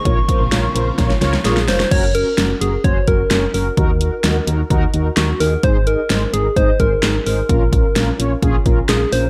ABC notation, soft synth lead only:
X:1
M:4/4
L:1/8
Q:1/4=129
K:Gblyd
V:1 name="Soft synth lead"
d'6 A c | d B2 A d B2 B- | B4- B z G B | c B2 A c B2 B- |
B4- B z A c |]